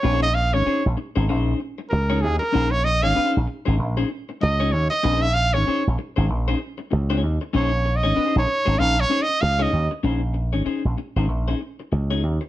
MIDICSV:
0, 0, Header, 1, 6, 480
1, 0, Start_track
1, 0, Key_signature, -5, "minor"
1, 0, Tempo, 625652
1, 31, Time_signature, 4, 2, 24, 8
1, 9581, End_track
2, 0, Start_track
2, 0, Title_t, "Trumpet"
2, 0, Program_c, 0, 56
2, 0, Note_on_c, 0, 73, 96
2, 169, Note_off_c, 0, 73, 0
2, 174, Note_on_c, 0, 75, 107
2, 266, Note_on_c, 0, 77, 102
2, 277, Note_off_c, 0, 75, 0
2, 413, Note_on_c, 0, 73, 89
2, 425, Note_off_c, 0, 77, 0
2, 653, Note_off_c, 0, 73, 0
2, 1456, Note_on_c, 0, 70, 77
2, 1700, Note_on_c, 0, 68, 82
2, 1711, Note_off_c, 0, 70, 0
2, 1831, Note_off_c, 0, 68, 0
2, 1836, Note_on_c, 0, 70, 93
2, 2079, Note_on_c, 0, 73, 104
2, 2091, Note_off_c, 0, 70, 0
2, 2183, Note_on_c, 0, 75, 103
2, 2194, Note_off_c, 0, 73, 0
2, 2322, Note_on_c, 0, 77, 95
2, 2334, Note_off_c, 0, 75, 0
2, 2567, Note_off_c, 0, 77, 0
2, 3393, Note_on_c, 0, 75, 90
2, 3623, Note_on_c, 0, 73, 79
2, 3634, Note_off_c, 0, 75, 0
2, 3756, Note_off_c, 0, 73, 0
2, 3760, Note_on_c, 0, 75, 95
2, 4002, Note_on_c, 0, 76, 104
2, 4014, Note_off_c, 0, 75, 0
2, 4097, Note_on_c, 0, 77, 115
2, 4108, Note_off_c, 0, 76, 0
2, 4247, Note_on_c, 0, 73, 96
2, 4259, Note_off_c, 0, 77, 0
2, 4488, Note_off_c, 0, 73, 0
2, 5804, Note_on_c, 0, 73, 85
2, 6109, Note_on_c, 0, 75, 93
2, 6120, Note_off_c, 0, 73, 0
2, 6426, Note_off_c, 0, 75, 0
2, 6432, Note_on_c, 0, 73, 99
2, 6746, Note_on_c, 0, 77, 115
2, 6757, Note_off_c, 0, 73, 0
2, 6909, Note_on_c, 0, 73, 99
2, 6921, Note_off_c, 0, 77, 0
2, 7074, Note_on_c, 0, 75, 105
2, 7086, Note_off_c, 0, 73, 0
2, 7222, Note_on_c, 0, 77, 100
2, 7234, Note_off_c, 0, 75, 0
2, 7383, Note_on_c, 0, 75, 84
2, 7395, Note_off_c, 0, 77, 0
2, 7624, Note_off_c, 0, 75, 0
2, 9581, End_track
3, 0, Start_track
3, 0, Title_t, "Clean electric guitar"
3, 0, Program_c, 1, 27
3, 23, Note_on_c, 1, 61, 97
3, 26, Note_on_c, 1, 63, 92
3, 31, Note_on_c, 1, 68, 105
3, 31, Note_on_c, 1, 72, 97
3, 198, Note_off_c, 1, 61, 0
3, 199, Note_off_c, 1, 63, 0
3, 201, Note_off_c, 1, 68, 0
3, 201, Note_off_c, 1, 72, 0
3, 407, Note_on_c, 1, 73, 62
3, 412, Note_on_c, 1, 68, 58
3, 413, Note_on_c, 1, 63, 58
3, 414, Note_on_c, 1, 61, 62
3, 474, Note_off_c, 1, 73, 0
3, 476, Note_off_c, 1, 68, 0
3, 477, Note_off_c, 1, 61, 0
3, 477, Note_off_c, 1, 63, 0
3, 504, Note_on_c, 1, 61, 83
3, 508, Note_on_c, 1, 63, 91
3, 509, Note_on_c, 1, 68, 89
3, 511, Note_on_c, 1, 72, 89
3, 628, Note_off_c, 1, 61, 0
3, 630, Note_off_c, 1, 63, 0
3, 631, Note_off_c, 1, 68, 0
3, 632, Note_off_c, 1, 72, 0
3, 887, Note_on_c, 1, 72, 65
3, 889, Note_on_c, 1, 63, 64
3, 890, Note_on_c, 1, 68, 74
3, 894, Note_on_c, 1, 61, 55
3, 953, Note_off_c, 1, 72, 0
3, 955, Note_off_c, 1, 63, 0
3, 955, Note_off_c, 1, 68, 0
3, 957, Note_off_c, 1, 61, 0
3, 984, Note_on_c, 1, 61, 79
3, 989, Note_on_c, 1, 63, 83
3, 991, Note_on_c, 1, 68, 89
3, 992, Note_on_c, 1, 72, 87
3, 1211, Note_off_c, 1, 61, 0
3, 1214, Note_off_c, 1, 63, 0
3, 1215, Note_off_c, 1, 68, 0
3, 1215, Note_off_c, 1, 72, 0
3, 1609, Note_on_c, 1, 68, 74
3, 1609, Note_on_c, 1, 73, 90
3, 1615, Note_on_c, 1, 61, 62
3, 1616, Note_on_c, 1, 63, 73
3, 1692, Note_off_c, 1, 68, 0
3, 1692, Note_off_c, 1, 73, 0
3, 1695, Note_off_c, 1, 61, 0
3, 1695, Note_off_c, 1, 63, 0
3, 1937, Note_on_c, 1, 61, 94
3, 1943, Note_on_c, 1, 63, 105
3, 1946, Note_on_c, 1, 68, 112
3, 1950, Note_on_c, 1, 72, 96
3, 2064, Note_off_c, 1, 61, 0
3, 2067, Note_off_c, 1, 63, 0
3, 2068, Note_off_c, 1, 68, 0
3, 2070, Note_off_c, 1, 72, 0
3, 2324, Note_on_c, 1, 73, 63
3, 2327, Note_on_c, 1, 68, 62
3, 2329, Note_on_c, 1, 63, 57
3, 2332, Note_on_c, 1, 61, 55
3, 2391, Note_off_c, 1, 73, 0
3, 2393, Note_off_c, 1, 68, 0
3, 2394, Note_off_c, 1, 63, 0
3, 2395, Note_off_c, 1, 61, 0
3, 2415, Note_on_c, 1, 61, 88
3, 2419, Note_on_c, 1, 63, 83
3, 2423, Note_on_c, 1, 68, 83
3, 2425, Note_on_c, 1, 72, 95
3, 2592, Note_off_c, 1, 61, 0
3, 2594, Note_off_c, 1, 63, 0
3, 2596, Note_off_c, 1, 68, 0
3, 2597, Note_off_c, 1, 72, 0
3, 2804, Note_on_c, 1, 72, 65
3, 2807, Note_on_c, 1, 68, 71
3, 2809, Note_on_c, 1, 63, 58
3, 2811, Note_on_c, 1, 61, 62
3, 2871, Note_off_c, 1, 72, 0
3, 2873, Note_off_c, 1, 63, 0
3, 2873, Note_off_c, 1, 68, 0
3, 2875, Note_off_c, 1, 61, 0
3, 3046, Note_on_c, 1, 68, 76
3, 3046, Note_on_c, 1, 72, 88
3, 3052, Note_on_c, 1, 63, 74
3, 3054, Note_on_c, 1, 61, 71
3, 3129, Note_off_c, 1, 68, 0
3, 3130, Note_off_c, 1, 72, 0
3, 3132, Note_off_c, 1, 63, 0
3, 3133, Note_off_c, 1, 61, 0
3, 3528, Note_on_c, 1, 73, 77
3, 3532, Note_on_c, 1, 68, 73
3, 3536, Note_on_c, 1, 63, 60
3, 3537, Note_on_c, 1, 61, 64
3, 3610, Note_off_c, 1, 73, 0
3, 3612, Note_off_c, 1, 68, 0
3, 3614, Note_off_c, 1, 63, 0
3, 3615, Note_off_c, 1, 61, 0
3, 3861, Note_on_c, 1, 61, 92
3, 3865, Note_on_c, 1, 68, 108
3, 3866, Note_on_c, 1, 63, 99
3, 3867, Note_on_c, 1, 72, 110
3, 4034, Note_off_c, 1, 61, 0
3, 4036, Note_off_c, 1, 68, 0
3, 4037, Note_off_c, 1, 63, 0
3, 4037, Note_off_c, 1, 72, 0
3, 4249, Note_on_c, 1, 73, 78
3, 4252, Note_on_c, 1, 68, 67
3, 4255, Note_on_c, 1, 63, 65
3, 4258, Note_on_c, 1, 61, 52
3, 4313, Note_off_c, 1, 73, 0
3, 4314, Note_off_c, 1, 68, 0
3, 4316, Note_off_c, 1, 63, 0
3, 4317, Note_off_c, 1, 61, 0
3, 4348, Note_on_c, 1, 61, 77
3, 4351, Note_on_c, 1, 63, 80
3, 4352, Note_on_c, 1, 68, 91
3, 4356, Note_on_c, 1, 72, 93
3, 4468, Note_off_c, 1, 61, 0
3, 4469, Note_off_c, 1, 63, 0
3, 4470, Note_off_c, 1, 68, 0
3, 4472, Note_off_c, 1, 72, 0
3, 4728, Note_on_c, 1, 72, 62
3, 4732, Note_on_c, 1, 68, 64
3, 4736, Note_on_c, 1, 63, 59
3, 4738, Note_on_c, 1, 61, 52
3, 4791, Note_off_c, 1, 72, 0
3, 4794, Note_off_c, 1, 68, 0
3, 4796, Note_off_c, 1, 63, 0
3, 4797, Note_off_c, 1, 61, 0
3, 4970, Note_on_c, 1, 72, 94
3, 4975, Note_on_c, 1, 68, 77
3, 4978, Note_on_c, 1, 63, 83
3, 4979, Note_on_c, 1, 61, 77
3, 5050, Note_off_c, 1, 72, 0
3, 5051, Note_off_c, 1, 61, 0
3, 5053, Note_off_c, 1, 68, 0
3, 5054, Note_off_c, 1, 63, 0
3, 5447, Note_on_c, 1, 73, 82
3, 5449, Note_on_c, 1, 68, 73
3, 5451, Note_on_c, 1, 63, 71
3, 5453, Note_on_c, 1, 61, 67
3, 5535, Note_off_c, 1, 63, 0
3, 5536, Note_off_c, 1, 61, 0
3, 5541, Note_off_c, 1, 68, 0
3, 5546, Note_off_c, 1, 73, 0
3, 5780, Note_on_c, 1, 61, 97
3, 5784, Note_on_c, 1, 63, 86
3, 5785, Note_on_c, 1, 68, 102
3, 5790, Note_on_c, 1, 72, 101
3, 5903, Note_off_c, 1, 61, 0
3, 5905, Note_off_c, 1, 63, 0
3, 5905, Note_off_c, 1, 68, 0
3, 5908, Note_off_c, 1, 72, 0
3, 6163, Note_on_c, 1, 73, 65
3, 6166, Note_on_c, 1, 68, 57
3, 6169, Note_on_c, 1, 63, 63
3, 6173, Note_on_c, 1, 61, 55
3, 6228, Note_off_c, 1, 73, 0
3, 6230, Note_off_c, 1, 68, 0
3, 6232, Note_off_c, 1, 63, 0
3, 6233, Note_off_c, 1, 61, 0
3, 6256, Note_on_c, 1, 61, 83
3, 6259, Note_on_c, 1, 63, 92
3, 6262, Note_on_c, 1, 68, 85
3, 6265, Note_on_c, 1, 72, 86
3, 6431, Note_off_c, 1, 61, 0
3, 6432, Note_off_c, 1, 63, 0
3, 6434, Note_off_c, 1, 68, 0
3, 6435, Note_off_c, 1, 72, 0
3, 6639, Note_on_c, 1, 72, 78
3, 6643, Note_on_c, 1, 68, 69
3, 6646, Note_on_c, 1, 61, 61
3, 6646, Note_on_c, 1, 63, 72
3, 6707, Note_off_c, 1, 72, 0
3, 6708, Note_off_c, 1, 68, 0
3, 6710, Note_off_c, 1, 61, 0
3, 6710, Note_off_c, 1, 63, 0
3, 6740, Note_on_c, 1, 61, 70
3, 6743, Note_on_c, 1, 63, 79
3, 6747, Note_on_c, 1, 68, 81
3, 6750, Note_on_c, 1, 72, 79
3, 6863, Note_off_c, 1, 61, 0
3, 6864, Note_off_c, 1, 63, 0
3, 6866, Note_off_c, 1, 68, 0
3, 6868, Note_off_c, 1, 72, 0
3, 6977, Note_on_c, 1, 61, 61
3, 6981, Note_on_c, 1, 63, 65
3, 6984, Note_on_c, 1, 68, 66
3, 6988, Note_on_c, 1, 72, 76
3, 7075, Note_off_c, 1, 61, 0
3, 7077, Note_off_c, 1, 63, 0
3, 7078, Note_off_c, 1, 68, 0
3, 7080, Note_off_c, 1, 72, 0
3, 7359, Note_on_c, 1, 73, 73
3, 7361, Note_on_c, 1, 68, 73
3, 7365, Note_on_c, 1, 63, 69
3, 7366, Note_on_c, 1, 61, 67
3, 7444, Note_off_c, 1, 73, 0
3, 7446, Note_off_c, 1, 68, 0
3, 7447, Note_off_c, 1, 63, 0
3, 7448, Note_off_c, 1, 61, 0
3, 7697, Note_on_c, 1, 61, 95
3, 7701, Note_on_c, 1, 63, 90
3, 7704, Note_on_c, 1, 68, 80
3, 7707, Note_on_c, 1, 72, 93
3, 7822, Note_off_c, 1, 61, 0
3, 7824, Note_off_c, 1, 63, 0
3, 7825, Note_off_c, 1, 68, 0
3, 7827, Note_off_c, 1, 72, 0
3, 8076, Note_on_c, 1, 73, 50
3, 8079, Note_on_c, 1, 68, 50
3, 8083, Note_on_c, 1, 61, 50
3, 8084, Note_on_c, 1, 63, 52
3, 8146, Note_off_c, 1, 73, 0
3, 8147, Note_off_c, 1, 68, 0
3, 8150, Note_off_c, 1, 61, 0
3, 8150, Note_off_c, 1, 63, 0
3, 8170, Note_on_c, 1, 61, 76
3, 8175, Note_on_c, 1, 63, 74
3, 8176, Note_on_c, 1, 68, 84
3, 8179, Note_on_c, 1, 72, 80
3, 8299, Note_off_c, 1, 61, 0
3, 8301, Note_off_c, 1, 63, 0
3, 8302, Note_off_c, 1, 68, 0
3, 8304, Note_off_c, 1, 72, 0
3, 8565, Note_on_c, 1, 72, 56
3, 8569, Note_on_c, 1, 63, 51
3, 8570, Note_on_c, 1, 68, 55
3, 8575, Note_on_c, 1, 61, 45
3, 8631, Note_off_c, 1, 72, 0
3, 8633, Note_off_c, 1, 63, 0
3, 8634, Note_off_c, 1, 68, 0
3, 8636, Note_off_c, 1, 61, 0
3, 8805, Note_on_c, 1, 72, 68
3, 8809, Note_on_c, 1, 68, 58
3, 8812, Note_on_c, 1, 61, 53
3, 8814, Note_on_c, 1, 63, 59
3, 8889, Note_off_c, 1, 72, 0
3, 8891, Note_off_c, 1, 68, 0
3, 8892, Note_off_c, 1, 61, 0
3, 8893, Note_off_c, 1, 63, 0
3, 9286, Note_on_c, 1, 73, 77
3, 9290, Note_on_c, 1, 68, 74
3, 9293, Note_on_c, 1, 61, 54
3, 9293, Note_on_c, 1, 63, 62
3, 9370, Note_off_c, 1, 73, 0
3, 9372, Note_off_c, 1, 68, 0
3, 9374, Note_off_c, 1, 61, 0
3, 9374, Note_off_c, 1, 63, 0
3, 9581, End_track
4, 0, Start_track
4, 0, Title_t, "Slap bass"
4, 0, Program_c, 2, 36
4, 32, Note_on_c, 2, 34, 114
4, 419, Note_off_c, 2, 34, 0
4, 419, Note_on_c, 2, 32, 86
4, 491, Note_off_c, 2, 32, 0
4, 658, Note_on_c, 2, 34, 97
4, 730, Note_off_c, 2, 34, 0
4, 893, Note_on_c, 2, 32, 96
4, 994, Note_off_c, 2, 32, 0
4, 994, Note_on_c, 2, 34, 112
4, 1176, Note_off_c, 2, 34, 0
4, 1476, Note_on_c, 2, 37, 94
4, 1718, Note_off_c, 2, 37, 0
4, 1718, Note_on_c, 2, 39, 94
4, 1825, Note_off_c, 2, 39, 0
4, 1955, Note_on_c, 2, 34, 122
4, 2337, Note_off_c, 2, 34, 0
4, 2337, Note_on_c, 2, 32, 91
4, 2409, Note_off_c, 2, 32, 0
4, 2582, Note_on_c, 2, 34, 95
4, 2652, Note_off_c, 2, 34, 0
4, 2820, Note_on_c, 2, 32, 83
4, 2912, Note_off_c, 2, 32, 0
4, 2912, Note_on_c, 2, 34, 113
4, 3094, Note_off_c, 2, 34, 0
4, 3397, Note_on_c, 2, 37, 99
4, 3632, Note_off_c, 2, 37, 0
4, 3632, Note_on_c, 2, 39, 88
4, 3740, Note_off_c, 2, 39, 0
4, 3871, Note_on_c, 2, 34, 115
4, 4263, Note_off_c, 2, 34, 0
4, 4263, Note_on_c, 2, 32, 87
4, 4331, Note_off_c, 2, 32, 0
4, 4505, Note_on_c, 2, 34, 87
4, 4573, Note_off_c, 2, 34, 0
4, 4737, Note_on_c, 2, 32, 102
4, 4835, Note_off_c, 2, 32, 0
4, 4835, Note_on_c, 2, 34, 118
4, 5015, Note_off_c, 2, 34, 0
4, 5313, Note_on_c, 2, 37, 98
4, 5551, Note_off_c, 2, 37, 0
4, 5551, Note_on_c, 2, 39, 81
4, 5659, Note_off_c, 2, 39, 0
4, 5787, Note_on_c, 2, 34, 109
4, 6171, Note_off_c, 2, 34, 0
4, 6171, Note_on_c, 2, 32, 93
4, 6243, Note_off_c, 2, 32, 0
4, 6411, Note_on_c, 2, 34, 87
4, 6483, Note_off_c, 2, 34, 0
4, 6652, Note_on_c, 2, 32, 85
4, 6724, Note_off_c, 2, 32, 0
4, 6751, Note_on_c, 2, 34, 109
4, 6932, Note_off_c, 2, 34, 0
4, 7229, Note_on_c, 2, 37, 97
4, 7411, Note_off_c, 2, 37, 0
4, 7466, Note_on_c, 2, 39, 85
4, 7576, Note_off_c, 2, 39, 0
4, 7700, Note_on_c, 2, 34, 103
4, 8084, Note_off_c, 2, 34, 0
4, 8084, Note_on_c, 2, 32, 79
4, 8159, Note_off_c, 2, 32, 0
4, 8323, Note_on_c, 2, 34, 88
4, 8400, Note_off_c, 2, 34, 0
4, 8562, Note_on_c, 2, 32, 82
4, 8658, Note_off_c, 2, 32, 0
4, 8658, Note_on_c, 2, 34, 100
4, 8846, Note_off_c, 2, 34, 0
4, 9145, Note_on_c, 2, 37, 80
4, 9386, Note_off_c, 2, 37, 0
4, 9386, Note_on_c, 2, 39, 72
4, 9498, Note_off_c, 2, 39, 0
4, 9581, End_track
5, 0, Start_track
5, 0, Title_t, "Muted clean electric guitar strokes"
5, 263, Note_on_c, 9, 29, 43
5, 340, Note_off_c, 9, 29, 0
5, 744, Note_on_c, 9, 29, 46
5, 820, Note_off_c, 9, 29, 0
5, 1225, Note_on_c, 9, 29, 46
5, 1301, Note_off_c, 9, 29, 0
5, 1368, Note_on_c, 9, 29, 45
5, 1445, Note_off_c, 9, 29, 0
5, 1463, Note_on_c, 9, 29, 40
5, 1540, Note_off_c, 9, 29, 0
5, 1708, Note_on_c, 9, 29, 45
5, 1785, Note_off_c, 9, 29, 0
5, 1851, Note_on_c, 9, 29, 53
5, 1928, Note_off_c, 9, 29, 0
5, 2181, Note_on_c, 9, 29, 45
5, 2257, Note_off_c, 9, 29, 0
5, 2660, Note_on_c, 9, 29, 49
5, 2736, Note_off_c, 9, 29, 0
5, 2899, Note_on_c, 9, 29, 37
5, 2976, Note_off_c, 9, 29, 0
5, 3141, Note_on_c, 9, 29, 47
5, 3218, Note_off_c, 9, 29, 0
5, 3291, Note_on_c, 9, 29, 44
5, 3367, Note_off_c, 9, 29, 0
5, 3381, Note_on_c, 9, 29, 42
5, 3458, Note_off_c, 9, 29, 0
5, 3626, Note_on_c, 9, 29, 45
5, 3703, Note_off_c, 9, 29, 0
5, 3768, Note_on_c, 9, 29, 50
5, 3845, Note_off_c, 9, 29, 0
5, 4105, Note_on_c, 9, 29, 49
5, 4181, Note_off_c, 9, 29, 0
5, 4589, Note_on_c, 9, 29, 48
5, 4666, Note_off_c, 9, 29, 0
5, 4827, Note_on_c, 9, 29, 38
5, 4904, Note_off_c, 9, 29, 0
5, 5060, Note_on_c, 9, 29, 41
5, 5137, Note_off_c, 9, 29, 0
5, 5201, Note_on_c, 9, 29, 54
5, 5278, Note_off_c, 9, 29, 0
5, 5299, Note_on_c, 9, 29, 50
5, 5376, Note_off_c, 9, 29, 0
5, 5544, Note_on_c, 9, 29, 36
5, 5621, Note_off_c, 9, 29, 0
5, 5687, Note_on_c, 9, 29, 56
5, 5764, Note_off_c, 9, 29, 0
5, 6023, Note_on_c, 9, 29, 40
5, 6100, Note_off_c, 9, 29, 0
5, 6499, Note_on_c, 9, 29, 48
5, 6576, Note_off_c, 9, 29, 0
5, 6884, Note_on_c, 9, 29, 46
5, 6961, Note_off_c, 9, 29, 0
5, 7124, Note_on_c, 9, 29, 40
5, 7200, Note_off_c, 9, 29, 0
5, 7219, Note_on_c, 9, 29, 41
5, 7295, Note_off_c, 9, 29, 0
5, 7459, Note_on_c, 9, 29, 44
5, 7536, Note_off_c, 9, 29, 0
5, 7603, Note_on_c, 9, 29, 55
5, 7680, Note_off_c, 9, 29, 0
5, 7929, Note_on_c, 9, 29, 40
5, 8006, Note_off_c, 9, 29, 0
5, 8419, Note_on_c, 9, 29, 44
5, 8496, Note_off_c, 9, 29, 0
5, 8666, Note_on_c, 9, 29, 39
5, 8742, Note_off_c, 9, 29, 0
5, 8904, Note_on_c, 9, 29, 42
5, 8981, Note_off_c, 9, 29, 0
5, 9050, Note_on_c, 9, 29, 33
5, 9127, Note_off_c, 9, 29, 0
5, 9144, Note_on_c, 9, 29, 37
5, 9221, Note_off_c, 9, 29, 0
5, 9384, Note_on_c, 9, 29, 39
5, 9461, Note_off_c, 9, 29, 0
5, 9521, Note_on_c, 9, 29, 49
5, 9581, Note_off_c, 9, 29, 0
5, 9581, End_track
6, 0, Start_track
6, 0, Title_t, "Muted slap bass strokes"
6, 509, Note_on_c, 9, 29, 47
6, 586, Note_off_c, 9, 29, 0
6, 6271, Note_on_c, 9, 29, 45
6, 6347, Note_off_c, 9, 29, 0
6, 8179, Note_on_c, 9, 29, 40
6, 8256, Note_off_c, 9, 29, 0
6, 9581, End_track
0, 0, End_of_file